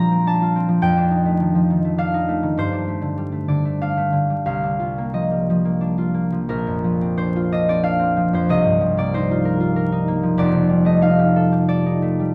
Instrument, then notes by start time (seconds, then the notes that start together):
harp
Already playing: A#2 F3 C4 D4 F4 D5 A#5
0.11 C4
0.27 D4 A5
0.42 F4
0.56 C4
0.68 F3
0.82 F2 G5
0.97 D4
1.11 D#4
1.25 A3
1.40 D#3
1.55 F3
1.70 D#3
1.85 A3
1.98 D4 F5
2.14 D#4
2.29 A3
2.43 D#3
2.58 G2 C5
2.72 D4
2.88 A3
3.01 D3
3.17 G3
3.32 A3
3.48 D3 D5
3.65 A3
3.81 D4 F5
3.97 A3
4.13 D3
4.30 G3
4.46 C2 F5
4.63 D4
4.79 F4
4.98 A#3
5.13 F3 D#5
5.31 G3
5.50 F3
5.65 A#3
5.81 D4
5.98 F4
6.14 A#3
6.32 F3
6.49 A#1 A#4
6.67 F2
6.84 F3
7.02 C4
7.17 D4 C5
7.36 F4
7.52 D4 D#5
7.68 C4 D5
7.83 D4 F5
7.99 C4
8.17 F3
8.33 F2 C5
8.49 C2 D#5
8.64 G2
8.81 F3
8.97 A#3 D5
9.14 D#4 C5
9.31 F4
9.45 A#4
9.60 F4
9.76 A#4
9.92 D#4
10.08 A#3
10.23 F3
10.37 F1 F2 D5
10.53 C3
10.69 G3
10.85 A3 D#5
11.01 D#4 F5
11.19 G4
11.36 A4
11.52 G4
11.68 A4 D5
11.86 D#4
12.02 A3
12.20 G3